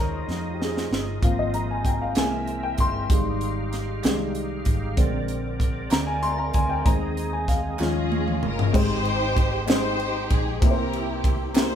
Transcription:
Already playing: D#2 F3 G#3 C#4 D#4 F4 C5 C#5 D#5
0.00 A#4
0.28 F2, snare
0.54 G4
0.62 G#4, snare
0.77 snare
0.91 G1, snare
1.22 G#1 F3 A#3 C4 F5, kick, closed hi-hat
1.39 D#5
1.54 A#5, closed hi-hat
1.71 G#5
1.85 G5, kick, closed hi-hat
2.02 F5
2.15 C2 E3 G#3 A#3 C4 A#4 E5 G#5, snare, clap, closed hi-hat
2.47 closed hi-hat
2.63 G5
2.78 G1 C6, kick, closed hi-hat
3.09 G#1 D#3 G3 G#3 D#4 G4 F5, kick, closed hi-hat
3.41 closed hi-hat
3.73 snare, closed hi-hat
4.03 C2 D#3 G3 G#3, snare, clap, closed hi-hat
4.35 closed hi-hat
4.65 G#1, kick, closed hi-hat
4.97 A#1 D3 G#3 C4 A#4 D5, kick, closed hi-hat
5.28 closed hi-hat
5.60 kick, closed hi-hat
5.91 D2 A#5, snare, clap, closed hi-hat
6.07 G#5
6.23 C6, closed hi-hat
6.38 A#5
6.54 D2 G#5, kick, closed hi-hat
6.69 G5
6.85 D#2 D#3 G#3 C4 G#4 D#5 A#5, kick, closed hi-hat
7.17 closed hi-hat
7.33 G#5
7.48 F5, kick, snare, closed hi-hat
7.79 D#2 F3 G#3 C#4 F4 D#5, snare, clap
7.83 G#4
8.12 high tom
8.28 mid tom
8.43 G1 A#4, mid tom
8.59 floor tom
8.73 G#1 G#2 G#3 C4 D#4 G4 C5, kick, crash
9.05 ride
9.37 kick, ride
9.66 G#3 C4 D#4 G4 C5, snare, clap, ride
9.70 D#4 G4
10.00 ride
10.30 A#1 G#4, kick, ride
10.61 C2 C3 A#3 C4 E4 G4 A#4 B4, kick, ride
10.71 C5
10.93 ride
11.24 kick, ride
11.54 A#3 C4 E4 G4 A#4 C5, snare, clap, ride

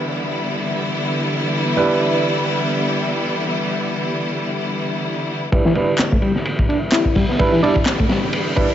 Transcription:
Already playing: D3 E3 G3 B3 D4 E4 B4, downlifter
1.77 G3 D4 E4 B4
5.52 D3 E3 G3 B3 D4 E4 B4, kick, ride, riser
5.65 E3, snare
5.75 G3 D4 E4 B4, ride
5.98 snare, clap, ride
6.12 A3, kick
6.22 G3, ride
6.36 snare
6.45 ride
6.59 kick
6.69 D4, ride
6.92 E4, snare, clap, ride
7.05 kick
7.15 G3, kick, open hi-hat
7.29 B3, snare
7.39 G3 D4 E4 B4, kick, ride
7.52 E3
7.63 G3 D4 E4 D5, ride
7.76 kick
7.85 snare, clap, ride
7.99 A3, kick
8.09 G3, snare, ride
8.33 ride
8.56 G3 D4 E4 B4, kick, ride
8.70 ride

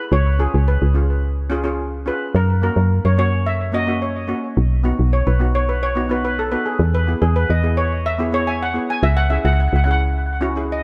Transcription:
Already playing: E4 G#4 B4
0.12 C#2 C#5
0.39 C#4 F4 G#4
0.54 C#2
0.68 B4
0.82 C#2
0.94 C#4 F4 G#4
1.50 C#4 F4 G#4
1.64 C#4 F4 G#4
2.06 C#4 F4 G#4 B4
2.35 F#2 A#4
2.62 A#3 C#4 F#4 A#4
2.76 F#2
3.05 F#2 C#5
3.17 A#3 C#4 F#4 C#5
3.46 E5
3.72 A#3 C#4 F#4 D#5
3.87 A#3 C#4 F#4
4.02 C#5
4.27 A#3 C#4 F#4
4.57 B1
4.83 B3 D#4 F#4
4.99 B1
5.13 C#5
5.27 B1 B4
5.39 B3 D#4 F#4
5.55 C#5
5.69 B4
5.83 C#5
5.95 B3 D#4 F#4
6.09 B3 D#4 F#4 B4
6.25 B4
6.39 A4
6.51 B3 D#4 F#4 B4
6.66 G#4
6.79 E2
6.95 B4
7.07 B3 E4 G#4
7.22 E2 G#4
7.36 B4
7.50 E2 D#5
7.62 B3 E4 G#4
7.77 C#5
8.06 E5
8.19 B3 E4 G#4
8.32 B3 E4 G#4 C#5
8.47 G#5
8.63 F#5
8.74 B3 E4 G#4
8.90 G#5
9.03 C#2 E5
9.17 F#5
9.30 C#4 E4 G#4 E5
9.45 C#2 F#5
9.53 F#5
9.60 F#5
9.68 F#5
9.73 C#2 F#5
9.84 C#4 E4 G#4 F#5
9.91 F#5
10.41 C#4 E4 F#4
10.56 C#4 E4 G#4
10.72 D#5

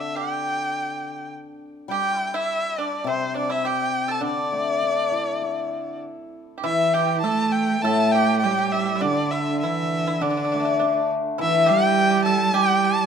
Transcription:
Already playing: D3 D4
0.00 E5
0.15 G4 G5
1.88 G3 G4 G5
2.18 E4
2.27 G5
2.34 E4 E5
2.78 D4 D5
3.04 C3 C4
3.08 C5
3.35 D4 D5
3.50 E4 E5
3.65 G4 G5
4.08 A4 A5
4.21 D3 D4
4.26 D5
4.52 A3
4.82 D4
5.12 E4
5.42 A4
6.58 G4
6.63 E3 E4 E5
6.94 G4 G5
7.21 A3 A4 A5
7.52 G5
7.82 A2 A3 A4 A5
8.12 G4 G5
8.40 G4 G5
8.44 G3
8.51 G4
8.58 G4
8.66 G4
8.72 G4 E5
8.79 G4
8.86 G4
8.96 E4
9.01 D3 D4 D5
9.31 E4 E5
9.60 E3 E4 E5
10.07 E4
10.21 D3 D4 D5
10.30 D4
10.37 D4
10.45 D4
10.52 A3 D4
10.60 D4
10.65 D4
10.79 D4
11.38 E3 E4 E5
11.66 G3 G4 G5
12.11 G4
12.25 A4 A5
12.54 G3 G4 G5
12.84 A5

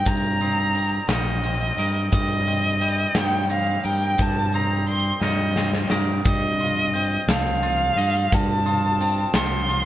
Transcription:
Already playing: C4 D#4 A#4
0.05 G2 G3 A#5 G6, kick, closed hi-hat
0.40 C4 D#6, closed hi-hat
0.74 G3, closed hi-hat
1.08 A#1 D#4 D#5 F6, snare, closed hi-hat
1.44 C4, closed hi-hat
1.77 G2 A#4 D#6, closed hi-hat
2.12 G2 G3 D#5 D#6, kick, closed hi-hat
2.47 C4, closed hi-hat
2.81 G3 G6, closed hi-hat
3.15 G2 D#4 G5, snare, closed hi-hat
3.49 C4 F5 A#6, closed hi-hat
3.84 G2 A#4 G5, closed hi-hat
4.18 G2 G3 A5 G6, kick, closed hi-hat
4.53 C4 A#5 D#6, closed hi-hat
4.87 G3 C6, closed hi-hat
5.21 G2 D#4 D#5 F6, snare
5.56 C4, snare
5.73 snare
5.90 G2 A#4 D#6, snare
6.25 G2 G3 D#5 D#6, kick, closed hi-hat
6.59 F4, closed hi-hat
6.94 C4 G6, closed hi-hat
7.28 C2 A4 F5, snare, closed hi-hat
7.63 F4 A6, closed hi-hat
7.95 G2 D#5, closed hi-hat
8.31 G2 G3 A5 F6, kick, closed hi-hat
8.66 F4 D#6, closed hi-hat
9.01 C4, closed hi-hat
9.34 C2 A4 C6 F6, snare, closed hi-hat
9.69 F4, closed hi-hat

